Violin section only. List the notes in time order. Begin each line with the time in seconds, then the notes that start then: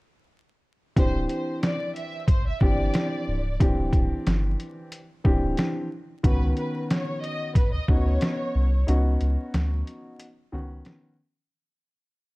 0.98 C5
1.28 C5
1.64 D5
1.95 E5
2.29 C5
2.47 E5
2.61 D5
6.25 B4
6.58 B4
6.91 C#5
7.22 D#5
7.55 B4
7.73 D#5
7.90 C#5